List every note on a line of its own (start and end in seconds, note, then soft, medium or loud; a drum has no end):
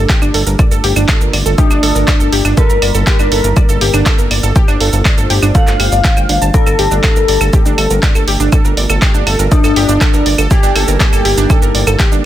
0.00 0.57 A3 medium
0.00 2.53 D4 medium
0.00 0.57 G4 medium
0.09 0.20 G4 loud
0.09 kick loud
0.09 clap loud
0.09 shaker medium
0.22 0.31 G1 medium
0.22 0.29 D4 loud
0.22 claves medium
0.22 shaker medium
0.34 0.43 G1 loud
0.34 0.45 A4 loud
0.34 open hi-hat loud
0.47 0.55 G1 medium
0.47 0.54 A#4 medium
0.47 shaker medium
0.59 2.55 A3 medium
0.59 2.55 F4 medium
0.59 0.63 D5 medium
0.59 kick loud
0.59 claves medium
0.59 shaker medium
0.71 0.80 G1 medium
0.71 0.78 A4 loud
0.71 shaker medium
0.84 0.93 G1 loud
0.84 0.94 G4 loud
0.84 open hi-hat loud
0.96 1.05 G1 medium
0.96 1.03 D4 loud
0.96 claves medium
0.96 shaker medium
1.09 1.19 A4 loud
1.09 kick loud
1.09 clap loud
1.09 shaker medium
1.21 1.30 G1 medium
1.21 1.28 A#4 medium
1.21 shaker medium
1.33 1.42 G1 loud
1.33 1.38 D5 medium
1.33 open hi-hat loud
1.33 claves medium
1.46 1.55 G1 medium
1.46 1.53 A4 loud
1.46 shaker medium
1.58 2.47 D4 loud
1.58 1.69 G4 loud
1.58 kick loud
1.58 shaker medium
1.71 1.79 G1 medium
1.71 1.77 D4 loud
1.71 claves medium
1.71 shaker medium
1.83 1.92 G1 loud
1.83 1.93 A4 loud
1.83 open hi-hat loud
1.95 2.04 G1 medium
1.95 2.02 A#4 medium
1.95 shaker medium
2.08 2.12 D5 medium
2.08 kick loud
2.08 clap loud
2.08 claves soft
2.08 shaker medium
2.20 2.29 G1 medium
2.20 2.27 A4 loud
2.20 shaker medium
2.32 2.41 G1 loud
2.32 2.43 G4 loud
2.32 open hi-hat loud
2.45 2.54 G1 medium
2.45 2.52 D4 loud
2.45 claves medium
2.45 shaker medium
2.57 4.54 G3 medium
2.57 4.54 A#3 medium
2.57 4.54 D#4 medium
2.57 2.68 A4 loud
2.57 3.03 A#4 loud
2.57 kick loud
2.57 shaker medium
2.70 2.78 G1 medium
2.70 2.77 A#4 medium
2.70 shaker medium
2.82 2.91 G1 loud
2.82 2.86 D5 medium
2.82 open hi-hat loud
2.82 claves soft
2.95 3.03 G1 medium
2.95 3.01 A4 loud
2.95 shaker medium
3.07 3.17 G4 loud
3.07 3.96 A#4 loud
3.07 3.96 A#4 medium
3.07 kick loud
3.07 clap loud
3.07 shaker medium
3.19 3.28 G1 medium
3.19 3.26 D4 loud
3.19 claves medium
3.19 shaker medium
3.32 3.40 G1 loud
3.32 3.42 A4 loud
3.32 open hi-hat loud
3.44 3.53 G1 medium
3.44 3.51 A#4 medium
3.44 shaker medium
3.56 3.61 D5 medium
3.56 kick loud
3.56 claves soft
3.56 shaker medium
3.69 3.78 G1 medium
3.69 3.76 A4 loud
3.69 shaker medium
3.81 3.90 G1 loud
3.81 3.92 G4 loud
3.81 open hi-hat loud
3.94 4.02 G1 medium
3.94 4.01 D4 loud
3.94 claves soft
3.94 shaker medium
4.06 4.17 A4 loud
4.06 kick loud
4.06 clap loud
4.06 shaker medium
4.18 4.27 G1 medium
4.18 4.25 A#4 medium
4.18 shaker medium
4.31 4.40 G1 loud
4.31 4.35 D5 medium
4.31 open hi-hat loud
4.31 claves soft
4.43 4.52 G1 medium
4.43 4.50 A4 loud
4.43 shaker medium
4.56 10.47 A3 medium
4.56 10.47 D4 medium
4.56 6.52 F4 medium
4.56 4.66 G4 loud
4.56 6.52 C5 medium
4.56 kick loud
4.56 shaker medium
4.68 4.77 G1 medium
4.68 4.75 D4 loud
4.68 claves medium
4.68 shaker medium
4.80 4.89 G1 loud
4.80 4.91 A4 loud
4.80 open hi-hat loud
4.93 5.02 G1 medium
4.93 5.00 A4 medium
4.93 shaker medium
5.05 5.09 D5 medium
5.05 kick loud
5.05 clap loud
5.05 claves soft
5.05 shaker medium
5.18 5.26 G1 medium
5.18 5.25 A4 loud
5.18 shaker medium
5.30 5.39 G1 loud
5.30 5.40 G4 loud
5.30 open hi-hat loud
5.43 5.51 G1 medium
5.43 5.49 D4 loud
5.43 claves medium
5.43 shaker medium
5.55 5.65 A4 loud
5.55 6.44 F5 loud
5.55 kick loud
5.55 shaker medium
5.67 5.76 G1 medium
5.67 5.74 A4 medium
5.67 clap soft
5.67 shaker medium
5.80 5.88 G1 loud
5.80 5.87 G4 medium
5.80 open hi-hat loud
5.80 claves medium
5.92 6.01 G1 medium
5.92 5.99 D5 medium
5.92 shaker medium
6.04 6.15 G5 medium
6.04 kick loud
6.04 clap loud
6.04 shaker medium
6.17 6.26 G1 medium
6.17 6.21 G5 loud
6.17 claves soft
6.17 shaker medium
6.29 6.38 G1 loud
6.29 6.36 D4 medium
6.29 open hi-hat loud
6.42 6.50 G1 medium
6.42 6.46 A5 loud
6.42 shaker medium
6.54 8.50 G4 medium
6.54 7.00 A4 loud
6.54 6.58 D5 medium
6.54 kick loud
6.54 shaker medium
6.66 6.75 G1 medium
6.66 6.73 A4 loud
6.66 claves medium
6.66 shaker medium
6.79 6.88 G1 loud
6.79 6.89 G4 loud
6.79 open hi-hat loud
6.91 7.00 G1 medium
6.91 6.98 D4 loud
6.91 shaker medium
7.04 7.14 A4 loud
7.04 7.93 A4 loud
7.04 kick loud
7.04 clap loud
7.04 claves medium
7.04 shaker medium
7.16 7.25 G1 medium
7.16 7.23 A#4 medium
7.16 shaker medium
7.28 7.37 G1 loud
7.28 7.33 D5 medium
7.28 open hi-hat loud
7.41 7.50 G1 medium
7.41 7.48 A4 loud
7.41 claves medium
7.41 shaker medium
7.53 7.64 G4 loud
7.53 kick loud
7.53 shaker medium
7.66 7.74 G1 medium
7.66 7.73 D4 loud
7.66 shaker medium
7.78 7.87 G1 loud
7.78 7.88 A4 loud
7.78 open hi-hat loud
7.78 claves medium
7.90 7.99 G1 medium
7.90 7.97 A#4 medium
7.90 shaker medium
8.03 8.07 D5 medium
8.03 kick loud
8.03 clap loud
8.03 shaker medium
8.15 8.24 G1 medium
8.15 8.22 A4 loud
8.15 claves medium
8.15 shaker medium
8.28 8.36 G1 loud
8.28 8.38 G4 loud
8.28 open hi-hat loud
8.40 8.49 G1 medium
8.40 8.47 D4 loud
8.40 shaker medium
8.52 10.49 F4 medium
8.52 8.63 A4 loud
8.52 kick loud
8.52 claves medium
8.52 shaker medium
8.65 8.74 G1 medium
8.65 8.72 A#4 medium
8.65 shaker medium
8.77 8.86 G1 loud
8.77 8.81 D5 medium
8.77 open hi-hat loud
8.90 8.98 G1 medium
8.90 8.97 A4 loud
8.90 claves medium
8.90 shaker medium
9.02 9.12 G4 loud
9.02 kick loud
9.02 clap loud
9.02 shaker medium
9.14 9.23 G1 medium
9.14 9.21 D4 loud
9.14 shaker medium
9.27 9.36 G1 loud
9.27 9.37 A4 loud
9.27 open hi-hat loud
9.27 claves medium
9.39 9.48 G1 medium
9.39 9.46 A#4 medium
9.39 shaker medium
9.51 10.41 D4 loud
9.51 9.56 D5 medium
9.51 kick loud
9.51 shaker medium
9.64 9.73 G1 medium
9.64 9.71 A4 loud
9.64 claves medium
9.64 shaker medium
9.76 9.85 G1 loud
9.76 9.87 G4 loud
9.76 open hi-hat loud
9.89 9.97 G1 loud
9.89 9.96 D4 loud
9.89 shaker medium
10.01 10.12 A4 loud
10.01 kick loud
10.01 clap loud
10.01 claves medium
10.01 shaker medium
10.14 10.22 G1 medium
10.14 10.20 A#4 medium
10.14 shaker medium
10.26 10.35 G1 loud
10.26 10.30 D5 medium
10.26 open hi-hat loud
10.38 10.47 G1 medium
10.38 10.45 A4 loud
10.38 claves medium
10.38 shaker medium
10.51 12.25 G3 medium
10.51 12.25 A#3 medium
10.51 12.25 D#4 medium
10.51 10.96 G4 loud
10.51 10.61 G4 loud
10.51 10.96 G4 loud
10.51 12.25 A#4 medium
10.51 kick loud
10.51 shaker medium
10.63 10.72 G1 medium
10.63 10.70 D4 loud
10.63 shaker medium
10.75 10.84 G1 loud
10.75 10.86 A4 loud
10.75 open hi-hat loud
10.75 claves medium
10.88 10.97 G1 medium
10.88 10.95 A#4 medium
10.88 shaker medium
11.00 11.90 G4 loud
11.00 11.04 D5 medium
11.00 kick loud
11.00 clap loud
11.00 shaker medium
11.13 11.21 G1 medium
11.13 11.20 A4 loud
11.13 claves medium
11.13 shaker medium
11.25 11.34 G1 loud
11.25 11.36 G4 loud
11.25 open hi-hat loud
11.37 11.46 G1 medium
11.37 11.44 D4 loud
11.37 shaker medium
11.50 11.60 A4 loud
11.50 kick loud
11.50 claves medium
11.50 shaker medium
11.62 11.71 G1 medium
11.62 11.69 A#4 medium
11.62 shaker medium
11.75 11.83 G1 loud
11.75 11.79 D5 medium
11.75 open hi-hat loud
11.87 11.96 G1 medium
11.87 11.94 A4 loud
11.87 claves medium
11.87 shaker medium
11.99 12.10 G4 loud
11.99 kick loud
11.99 clap loud
11.99 shaker medium
12.12 12.21 G1 medium
12.12 12.19 D4 loud
12.12 shaker medium